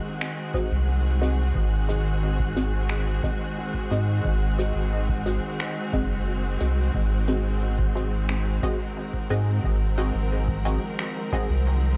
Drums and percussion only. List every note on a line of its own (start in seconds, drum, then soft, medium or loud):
0.21 finger snap medium
0.54 kick loud
0.54 closed hi-hat medium
1.22 closed hi-hat medium
1.55 kick loud
1.89 closed hi-hat medium
2.39 kick loud
2.56 closed hi-hat medium
2.89 finger snap medium
3.23 kick loud
3.23 closed hi-hat medium
3.74 kick medium
3.91 closed hi-hat medium
4.25 kick loud
4.59 closed hi-hat medium
5.09 kick loud
5.26 closed hi-hat medium
5.60 finger snap medium
5.93 kick loud
5.93 closed hi-hat medium
6.60 closed hi-hat medium
6.94 kick loud
7.27 closed hi-hat medium
7.79 kick loud
7.96 closed hi-hat medium
8.29 finger snap medium
8.63 kick loud
8.63 closed hi-hat medium
9.13 kick medium
9.30 closed hi-hat medium
9.64 kick loud
9.98 closed hi-hat medium
10.48 kick loud
10.65 closed hi-hat medium
10.99 finger snap medium
11.32 kick loud
11.32 closed hi-hat medium